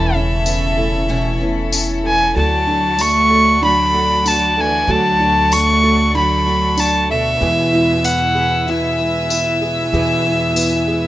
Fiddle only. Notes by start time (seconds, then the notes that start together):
Already playing: A5
0.15 E5
2.06 G#5
2.36 A5
3.01 C#6
3.64 B5
4.27 A5
4.60 G#5
4.91 A5
5.53 C#6
6.17 B5
6.79 A5
7.11 E5
8.04 F#5
8.70 E5